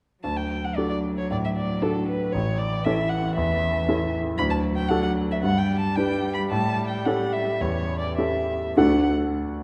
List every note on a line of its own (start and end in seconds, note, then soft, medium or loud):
0.24 0.76 D2 soft
0.24 2.35 F#3 soft
0.24 0.38 A5 medium
0.37 0.66 G5 medium
0.65 0.77 F#5 medium
0.76 1.27 D4 soft
0.76 1.27 F#4 soft
0.76 1.27 A4 soft
0.76 0.89 D5 medium
0.89 0.97 D5 medium
1.18 1.30 C#5 soft
1.31 1.81 A2 soft
1.31 1.36 D5 medium
1.44 1.49 E5 medium
1.56 1.84 D5 medium
1.82 2.30 D4 soft
1.82 2.30 F#4 soft
1.82 2.08 A4 medium
1.82 2.30 A4 soft
2.09 2.34 B4 medium
2.33 2.84 A1 soft
2.33 4.39 E3 medium
2.33 2.60 C#5 medium
2.58 2.86 D5 medium
2.85 3.33 C#4 soft
2.85 3.33 E4 soft
2.85 3.33 A4 soft
2.85 3.11 E5 medium
3.09 3.36 F#5 medium
3.36 3.87 E2 soft
3.36 4.12 E5 medium
3.89 4.35 C#4 soft
3.89 4.35 E4 soft
3.89 4.36 A4 soft
4.38 4.89 D2 medium
4.38 5.45 F#3 medium
4.38 4.43 B5 medium
4.50 4.58 A5 medium
4.76 4.90 G5 medium
4.88 5.39 D4 soft
4.88 5.39 F#4 soft
4.88 5.39 A4 soft
4.88 5.02 F#5 medium
5.03 5.11 F#5 medium
5.32 5.37 E5 medium
5.43 5.95 G2 medium
5.43 8.55 G3 medium
5.43 5.60 F#5 medium
5.58 5.79 G5 medium
5.79 5.98 A5 medium
5.96 6.47 D4 soft
5.96 6.47 G4 soft
5.96 6.47 B4 soft
5.96 6.32 G5 medium
6.34 6.41 B5 medium
6.51 7.04 A2 medium
6.51 6.86 A5 medium
6.88 7.07 G5 medium
7.05 7.58 C#4 soft
7.05 7.58 G4 soft
7.05 7.58 A4 soft
7.05 7.34 F#5 medium
7.33 7.63 E5 medium
7.61 8.16 E2 soft
7.61 7.99 C#5 medium
8.00 8.18 D5 medium
8.18 8.72 C#4 soft
8.18 8.73 G4 soft
8.18 8.73 A4 soft
8.18 8.75 E5 medium
8.75 9.08 D2 medium
8.75 9.08 D3 medium
8.75 9.07 A3 medium
8.75 9.08 D4 medium
8.75 9.08 F#4 medium
8.75 9.08 A4 medium
8.75 9.08 F#5 medium